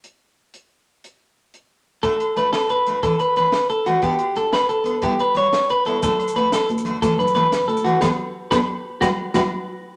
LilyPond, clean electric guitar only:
\new Staff \with { instrumentName = "Clean electric guitar" } { \time 12/8 \key d \major \tempo 4. = 120 r1. | a'4 b'8 a'8 b'4 a'8 b'8 b'4 a'8 fis'8 | g'4 a'8 b'8 a'4 g'8 b'8 cis''4 b'8 a'8 | a'4 b'8 a'8 r4 a'8 b'8 b'4 a'8 fis'8 |
<g' a' b'>8 r4 <g' a' b'>8 r4 <fis' g' b'>8 r8 <fis' g' b'>8 r4. | }